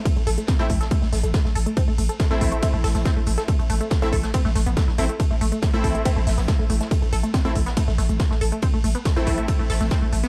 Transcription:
<<
  \new Staff \with { instrumentName = "Synth stab" } { \time 4/4 \key a \minor \tempo 4 = 140 <a c' e'>4~ <a c' e'>16 <a c' e'>16 r2 r8 | r4 r16 <a c' e'>2~ <a c' e'>8.~ | <a c' e'>4~ <a c' e'>16 <a c' e'>16 r2 <a c' e'>16 r16 | r4 r16 <a c' e'>2~ <a c' e'>8.~ |
<a c' e'>4~ <a c' e'>16 <a c' e'>16 r2 r8 | r4 r16 <a c' e'>2~ <a c' e'>8. | }
  \new Staff \with { instrumentName = "Synth arpeggio sound" } { \time 4/4 \key a \minor a16 a16 a'16 a16 c'16 a16 a16 a'16 a16 a16 a16 a16 a16 a16 a'16 a16 | c'16 a16 a16 a'16 a16 a16 a16 a16 a16 a16 a'16 a16 c'16 a16 a16 a'16 | a16 a16 a16 a16 a16 a16 a'16 a16 c'16 a16 a16 b16 a16 e'16 a16 a16 | a16 a16 a16 a16 a16 a16 a'16 a16 c'16 a16 a16 b16 a16 a16 a16 a16 |
a16 a16 a'16 a16 c'16 a16 a16 b16 a16 a16 a16 a16 a16 a16 a'16 a16 | c'16 a16 a16 b16 a16 a16 a16 a16 a16 a16 a'16 a16 c'16 a16 a16 b16 | }
  \new Staff \with { instrumentName = "808-style bass" } { \clef bass \time 4/4 \key a \minor r16 a,,16 a,,16 r8 a,,16 a,,16 r8 a,,16 a,,16 a,,16 r16 a,,16 a,,16 r16 | r16 a,,16 a,,16 r8 a,,16 a,,16 r8 a,,16 a,,16 a,,16 r16 a,,16 a,,16 r16 | r16 a,,16 a,,16 r8 a,,16 a,,16 r8 a,,16 a,,16 a,,16 r16 a,,16 a,,16 r16 | r16 a,,16 a,,16 r8 a,,16 a,,16 r8 a,,16 a,,16 a,,16 r16 a,,16 a,,16 r16 |
r16 a,,16 a,,16 r8 a,,16 a,,16 r8 a,,16 a,,16 a,,16 r16 a,,16 a,,16 r16 | r16 a,,16 a,,16 r8 a,,16 a,,16 r8 a,,16 a,,16 a,,16 r16 a,,16 a,,16 r16 | }
  \new DrumStaff \with { instrumentName = "Drums" } \drummode { \time 4/4 <hh bd cymr>16 hh16 <hh hho>16 hh16 <hh bd cymr sn>8 <hh hho bd>16 <hh sn>16 <hh bd cymr>16 sn16 <hh hho sn>16 hh16 <hh bd cymr sn>16 sn16 <hh hho>16 hh16 | <hh bd cymr>8 <hh hho>16 hh16 <hh bd cymr sn>8 <hh hho bd>16 hh16 <hh bd cymr>8 <hho sn>16 <hh sn>16 <hh bd cymr sn>8 <hh hho>16 <hh sn>16 | <hh bd cymr>16 hh16 <hh hho>16 hh16 <hh bd cymr sn>8 <hh hho bd>16 <hh sn>16 <hh bd cymr>16 sn16 <hh hho sn>16 hh16 <hh bd cymr sn>16 sn16 <hh hho>16 hh16 | <hh bd cymr>8 <hh hho>16 hh16 <hh bd cymr sn>8 <hh hho bd>16 hh16 <hh bd cymr>8 <hho sn>16 <hh sn>16 <hh bd cymr sn>8 <hh hho>16 <hh sn>16 |
<hh bd cymr>16 hh16 <hh hho>16 hh16 <hh bd cymr sn>8 <hh hho bd>16 <hh sn>16 <hh bd cymr>16 sn16 <hh hho sn>16 hh16 <hh bd cymr sn>16 sn16 <hh hho>16 hh16 | <hh bd cymr>8 <hh hho>16 hh16 <hh bd cymr sn>8 <hh hho bd>16 hh16 <hh bd cymr>8 <hho sn>16 <hh sn>16 <hh bd cymr sn>8 <hh hho>16 <hh sn>16 | }
>>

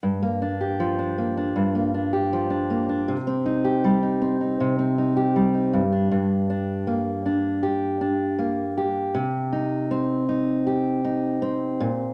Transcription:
\new Staff \with { instrumentName = "Steel-string acoustic guitar" } { \time 4/4 \key g \minor \tempo 4 = 79 g,16 bes16 d'16 g'16 f16 d'16 bes16 d'16 g,16 bes16 d'16 g'16 f16 d'16 bes16 d'16 | c16 c'16 ees'16 g'16 g16 ees'16 c'16 ees'16 c16 c'16 ees'16 g'16 g16 ees'16 g,16 d'16 | g,8 d'8 bes8 d'8 g'8 d'8 bes8 g'8 | c8 ees'8 c'8 ees'8 g'8 ees'8 c'8 bes,8 | }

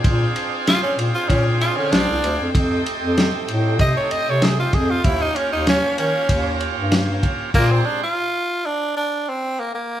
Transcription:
<<
  \new Staff \with { instrumentName = "String section" } { \time 4/4 \key f \dorian \tempo 4 = 96 << { g''1~ | g''1~ | g''1 | <c'' bes''>4 r2. | } \\ { <c'' d''>1 | <a' ees''>1 | <des'' f''>1 | d''4 r2. | } >> }
  \new Staff \with { instrumentName = "Tenor saxophone" } { \time 4/4 \key f \dorian r4 f'16 des'16 r16 f'16 des'16 r16 f'16 des'16 d'4 | r2 ees''16 des''16 ees''16 des''16 aes'16 f'16 aes'16 f'16 | e'16 ees'16 des'16 ees'16 des'8 des'4 r4. | bes16 c'16 d'16 f'4 d'8 d'8 c'8 bes16 bes8 | }
  \new Staff \with { instrumentName = "Tonewheel organ" } { \time 4/4 \key f \dorian <c' d' f' aes'>1 | <a c' ees' g'>1 | <bes des' f' g'>1 | <aes c' d' g'>4 r2. | }
  \new Staff \with { instrumentName = "Bass clarinet" } { \clef bass \time 4/4 \key f \dorian bes,8 r4 bes,16 r16 bes,8. d16 bes,,16 c,16 d,16 f,16 | f,8 r16 f,8 r16 a,8 c16 r16 f,16 c8. f,8 | ees,8 r16 ees,8 r16 ees16 r16 ees,8. g,8. r8 | bes,8 r2. r8 | }
  \new DrumStaff \with { instrumentName = "Drums" } \drummode { \time 4/4 <bd cymr>8 cymr8 <cymr sn>8 cymr8 <bd cymr>8 cymr8 <cymr sn>8 cymr8 | <bd cymr>8 cymr8 <cymr sn>8 cymr8 <bd cymr>8 cymr8 <cymr sn>8 <bd cymr>8 | <bd cymr>8 cymr8 <cymr sn>8 cymr8 <bd cymr>8 cymr8 <cymr sn>8 <bd cymr>8 | <cymc bd cymr>4 r4 r4 r4 | }
>>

